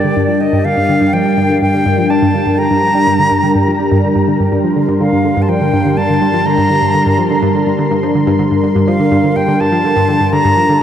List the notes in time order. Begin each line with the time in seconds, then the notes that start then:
Already playing: G3 D4 A#4 D5 G5
0.04 D3
0.17 G2
0.29 F3
0.41 D4 D#5
0.53 G2
0.65 D3 F5
0.77 G2
0.89 D3
1.01 G2
1.13 F3 G5
1.26 D4
1.38 G2
1.50 D3
1.62 G2 G5
1.74 D3
1.86 G2
1.98 F3
2.10 D4 A5
2.22 G2
2.34 D3
2.47 G2
2.58 D3 A#5
2.71 G2
2.83 F3
2.95 D4
3.07 G2
3.19 D3
3.31 G2
3.43 D3
3.55 G2
3.67 F3
3.80 D4
3.92 G2
4.04 D3
4.16 G2
4.28 D3
4.40 G2
4.52 G2 C6
4.64 F3
4.76 D3
4.88 G2
5.01 D3 F5
5.13 G2
5.25 D3
5.37 G2
5.42 A5
5.49 F3 G5
5.61 D3
5.73 G2
5.85 D3
5.97 G2 A5
6.09 D3
6.22 G2
6.34 F3
6.46 D3 A#5
6.58 G2
6.70 D3
6.82 G2
6.94 D3
7.06 G2
7.18 F3
7.30 D3
7.42 G2
7.55 D3
7.67 G2
7.79 D3
7.91 G2
8.03 F3
8.15 D3
8.27 G2
8.39 D3
8.51 G2
8.63 D3
8.76 G2
8.88 F3 F5
9.00 D3
9.12 G2
9.24 D3
9.36 G2 G5
9.48 D3
9.60 G2 A5
9.72 F3
9.84 D3
9.96 G2
10.09 D3
10.21 G2
10.33 D3 A#5
10.45 G2
10.57 F3
10.69 D3